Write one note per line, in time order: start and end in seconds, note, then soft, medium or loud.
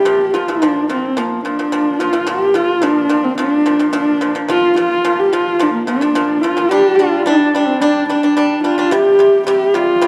0.00 0.35 G4 medium
0.05 0.28 A#2 medium
0.05 0.29 F3 medium
0.34 0.46 A#2 medium
0.34 0.46 F3 medium
0.34 0.50 F4 medium
0.48 0.60 A#2 medium
0.48 0.60 F3 medium
0.48 0.90 D4 medium
0.62 0.84 A#2 medium
0.62 0.85 F3 medium
0.89 1.12 A#2 medium
0.89 1.12 F3 medium
0.89 1.19 C4 medium
1.17 1.40 A#2 medium
1.17 1.40 F3 medium
1.17 1.44 A#3 medium
1.45 1.56 A#2 medium
1.45 1.57 F3 medium
1.45 2.01 D4 medium
1.59 1.70 A#2 soft
1.59 1.71 F3 medium
1.72 1.95 A#2 medium
1.72 1.95 F3 medium
1.99 2.12 A#2 medium
1.99 2.12 F3 medium
1.99 2.29 F4 medium
2.13 2.25 A#2 medium
2.13 2.25 F3 medium
2.27 2.50 A#2 medium
2.27 2.50 F3 medium
2.27 2.56 G4 loud
2.54 2.77 A#2 medium
2.54 2.78 F3 medium
2.54 2.85 F4 medium
2.82 3.05 A#2 medium
2.82 3.05 F3 loud
2.82 3.25 D4 medium
3.09 3.33 A#2 medium
3.09 3.33 F3 medium
3.24 3.38 C4 medium
3.38 3.61 A#2 medium
3.38 3.61 F3 medium
3.38 3.90 D4 loud
3.66 3.77 A#2 medium
3.66 3.78 F3 medium
3.79 3.91 A#2 medium
3.79 3.91 F3 medium
3.93 4.16 A#2 medium
3.93 4.16 F3 medium
3.93 4.33 D4 medium
4.21 4.33 A#2 medium
4.21 4.33 F3 medium
4.35 4.46 A#2 medium
4.35 4.47 F3 medium
4.48 4.71 A#2 medium
4.48 4.72 F3 medium
4.48 4.76 F4 loud
4.76 4.99 A#2 medium
4.76 4.99 F3 medium
4.76 5.21 F4 loud
5.05 5.27 A#2 medium
5.05 5.27 F3 loud
5.19 5.35 G4 medium
5.33 5.55 A#2 medium
5.33 5.55 F3 medium
5.33 5.63 F4 medium
5.59 5.82 A#2 medium
5.59 5.82 F3 medium
5.59 5.73 D4 medium
5.73 5.86 A#3 medium
5.86 5.98 A#2 medium
5.86 5.99 F3 medium
5.86 6.43 D4 medium
6.01 6.12 A#2 medium
6.01 6.13 F3 medium
6.15 6.37 A#2 medium
6.15 6.37 F3 loud
6.41 6.54 A#2 medium
6.41 6.54 F3 medium
6.41 6.70 F4 medium
6.57 6.68 A#2 medium
6.57 6.68 F3 medium
6.69 6.93 G3 medium
6.69 6.93 D4 medium
6.69 6.97 G4 loud
6.95 7.21 G3 medium
6.95 7.24 F4 medium
7.00 7.21 D4 medium
7.23 7.48 G3 medium
7.23 7.68 D4 medium
7.27 7.48 D4 loud
7.55 7.76 G3 medium
7.55 7.76 D4 medium
7.66 7.82 C4 medium
7.81 8.03 G3 medium
7.81 8.08 D4 medium
7.81 8.03 D4 loud
8.09 8.20 G3 medium
8.09 8.60 D4 medium
8.09 8.20 D4 medium
8.23 8.34 G3 medium
8.23 8.34 D4 medium
8.37 8.58 G3 medium
8.37 8.59 D4 medium
8.64 8.75 G3 medium
8.64 8.75 D4 medium
8.64 8.93 F4 medium
8.78 8.89 G3 medium
8.78 8.89 D4 medium
8.91 9.13 C3 medium
8.91 9.14 G3 loud
8.91 9.46 G4 loud
9.19 9.41 C3 medium
9.19 9.41 G3 medium
9.47 9.69 C3 medium
9.47 9.69 G3 loud
9.47 9.76 G4 loud
9.74 9.96 C3 medium
9.74 9.97 G3 medium
9.74 10.07 F4 loud
10.02 10.07 C3 medium
10.02 10.07 G3 medium